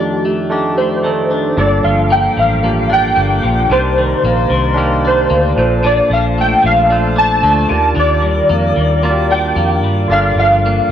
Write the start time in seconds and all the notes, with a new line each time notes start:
Already playing: F2 D#3 A3 D4 D#4 F4 G4 A4
0.00 D4
0.25 A3
0.50 A3 D4 D#4 G4
0.77 A3 C5
1.02 D#3 A3 D4 D#4 A4
1.31 D4
1.56 G1 G2 A#3 D4 F4 A4 D5 F5
1.60 G4 G5 D6
1.84 G1 F3 F5
2.10 A#3 G5
2.37 A1 F3 F5
2.62 A#3 D4 F4 G4
2.90 D4 G5
3.16 G1 A#3
3.43 A#1 F3
3.69 C2 C3 D4 D#4 G4 A#4 C5 D5 C6
3.98 D#3
4.24 A#1 A#3
4.50 C2 D#3
4.74 A#3 D4 D#4 G4 A#4
5.05 D4 C5
5.30 D2 A#3
5.56 A#1 A#2 D4 F4 A4 C5 D5 F5 A5 D6
5.83 A#2 D4 D5
6.10 A#1 F3 F5
6.38 A3 G5
6.63 A#1 F3 F5
6.89 A3 D4 F4 A4 C5
7.16 D4 A5
7.43 D2 A3
7.69 D#2 D#3 F4 G4 A#4 D5 G5
7.95 D#2 D#3 D4
7.99 D5
8.22 G3
8.49 F2 A#3
8.76 D#2 G3
9.03 A#3 F4 F#4 A#4 D5
9.10 G4
9.31 D4 G5
9.56 F2 A#3
9.83 G2 G3
10.08 G1 G2 D4 F4 A4 A#4 D5 F5
10.36 G1 F3 F5
10.66 A#3